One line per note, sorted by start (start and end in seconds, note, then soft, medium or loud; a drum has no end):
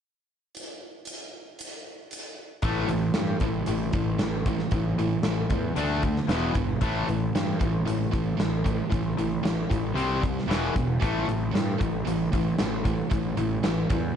0.55 closed hi-hat soft
1.05 closed hi-hat soft
1.59 closed hi-hat medium
2.11 closed hi-hat soft
2.62 2.84 A1 medium
2.62 2.87 A2 medium
2.62 2.88 E3 medium
2.62 2.88 A3 medium
2.62 kick medium
2.62 closed hi-hat medium
2.88 3.09 A1 medium
2.88 3.13 A2 medium
2.88 3.13 E3 medium
2.88 closed hi-hat soft
3.14 3.36 G2 medium
3.14 3.39 A2 medium
3.14 3.39 E3 medium
3.14 snare medium
3.14 closed hi-hat medium
3.40 3.62 A1 medium
3.40 3.65 A2 medium
3.40 3.65 E3 medium
3.40 kick medium
3.40 closed hi-hat medium
3.66 3.89 A1 medium
3.66 3.91 A2 medium
3.66 3.91 E3 medium
3.66 closed hi-hat medium
3.93 4.15 A1 medium
3.93 4.17 A2 medium
3.93 4.17 E3 medium
3.93 kick medium
3.93 closed hi-hat medium
4.19 4.60 A1 medium
4.19 4.44 A2 medium
4.19 4.44 E3 medium
4.19 snare medium
4.19 closed hi-hat medium
4.46 4.70 A2 medium
4.46 4.70 E3 medium
4.46 kick medium
4.46 closed hi-hat medium
4.59 snare soft
4.71 4.93 A1 medium
4.71 4.96 A2 medium
4.71 4.96 E3 medium
4.71 kick medium
4.71 closed hi-hat medium
4.96 5.18 A1 medium
4.96 5.22 A2 medium
4.96 5.22 E3 medium
4.96 closed hi-hat soft
5.23 5.44 A1 medium
5.23 5.48 A2 medium
5.23 5.48 E3 medium
5.23 snare medium
5.23 closed hi-hat medium
5.50 5.71 E2 medium
5.50 5.74 A2 medium
5.50 5.74 E3 medium
5.50 kick medium
5.50 closed hi-hat medium
5.76 6.18 D2 medium
5.76 6.01 D3 medium
5.76 6.02 A3 medium
5.76 6.02 D4 medium
5.76 closed hi-hat medium
6.03 6.27 D3 medium
6.03 6.27 A3 medium
6.03 kick medium
6.03 closed hi-hat soft
6.16 snare soft
6.28 6.49 E1 medium
6.28 6.53 E2 medium
6.28 6.53 B2 medium
6.28 6.54 E3 medium
6.28 snare medium
6.28 closed hi-hat medium
6.54 6.76 G1 medium
6.54 6.79 E2 medium
6.54 6.79 B2 medium
6.54 kick medium
6.54 closed hi-hat medium
6.81 7.02 A1 medium
6.81 7.06 A2 medium
6.81 7.06 E3 medium
6.81 7.07 A3 medium
6.81 kick medium
6.81 closed hi-hat medium
7.07 7.29 A1 medium
7.07 7.31 A2 medium
7.07 7.32 E3 medium
7.07 closed hi-hat soft
7.35 7.55 G2 medium
7.35 7.58 A2 medium
7.35 7.59 E3 medium
7.35 snare loud
7.35 closed hi-hat medium
7.61 7.81 A1 medium
7.61 7.84 A2 medium
7.61 7.85 E3 medium
7.61 kick medium
7.61 closed hi-hat medium
7.85 8.06 A1 medium
7.85 8.10 A2 medium
7.85 8.11 E3 medium
7.85 closed hi-hat medium
8.12 8.34 A1 medium
8.12 8.36 A2 medium
8.12 8.36 E3 medium
8.12 kick medium
8.12 closed hi-hat medium
8.40 8.81 A1 medium
8.40 8.63 A2 medium
8.40 8.63 E3 medium
8.40 snare medium
8.40 closed hi-hat medium
8.65 8.88 A2 medium
8.65 8.89 E3 medium
8.65 kick medium
8.65 closed hi-hat medium
8.90 9.13 A1 medium
8.90 9.14 A2 medium
8.90 9.15 E3 medium
8.90 kick medium
8.90 closed hi-hat medium
9.17 9.39 A1 medium
9.17 9.41 A2 medium
9.17 9.41 E3 medium
9.17 closed hi-hat medium
9.43 9.64 A1 medium
9.43 9.67 A2 medium
9.43 9.68 E3 medium
9.43 snare medium
9.43 closed hi-hat medium
9.70 9.92 A1 medium
9.70 9.94 A2 medium
9.70 9.94 E3 medium
9.70 kick medium
9.70 closed hi-hat medium
9.94 10.37 C2 medium
9.94 10.20 C3 medium
9.94 10.21 G3 medium
9.94 10.21 C4 medium
9.94 closed hi-hat medium
10.21 10.46 C3 medium
10.21 10.46 G3 medium
10.21 kick medium
10.21 closed hi-hat soft
10.38 snare soft
10.47 10.68 E1 medium
10.47 10.73 E2 medium
10.47 10.74 B2 medium
10.47 10.74 E3 medium
10.51 snare medium
10.51 closed hi-hat medium
10.76 10.96 E1 medium
10.76 10.99 E2 medium
10.76 10.99 B2 medium
10.76 kick medium
10.76 closed hi-hat soft
11.02 11.23 A1 medium
11.02 11.26 A2 medium
11.02 11.27 E3 medium
11.02 11.27 A3 medium
11.02 kick medium
11.02 closed hi-hat medium
11.28 11.49 A1 medium
11.28 11.52 A2 medium
11.28 11.52 E3 medium
11.28 closed hi-hat soft
11.54 11.75 G2 medium
11.54 11.78 A2 medium
11.54 11.78 E3 medium
11.54 snare medium
11.54 closed hi-hat medium
11.79 12.01 A1 medium
11.79 12.04 A2 medium
11.79 12.04 E3 medium
11.79 kick medium
11.79 closed hi-hat medium
12.07 12.27 A1 medium
12.07 12.30 A2 medium
12.07 12.31 E3 medium
12.07 closed hi-hat medium
12.33 12.53 A1 medium
12.33 12.57 A2 medium
12.33 12.57 E3 medium
12.33 kick medium
12.33 closed hi-hat medium
12.58 13.00 A1 medium
12.58 12.83 A2 medium
12.58 12.83 E3 medium
12.58 snare medium
12.58 closed hi-hat medium
12.84 13.08 A2 medium
12.84 13.09 E3 medium
12.84 kick medium
12.84 closed hi-hat medium
13.11 13.32 A1 medium
13.11 13.35 A2 medium
13.11 13.35 E3 medium
13.11 kick loud
13.11 closed hi-hat medium
13.37 13.58 A1 medium
13.37 13.61 A2 medium
13.37 13.61 E3 medium
13.37 closed hi-hat medium
13.63 13.85 A1 medium
13.63 13.88 A2 medium
13.63 13.88 E3 medium
13.63 snare medium
13.63 closed hi-hat medium
13.90 14.11 E2 medium
13.90 14.15 A2 medium
13.90 14.14 E3 medium
13.90 kick medium
13.90 closed hi-hat medium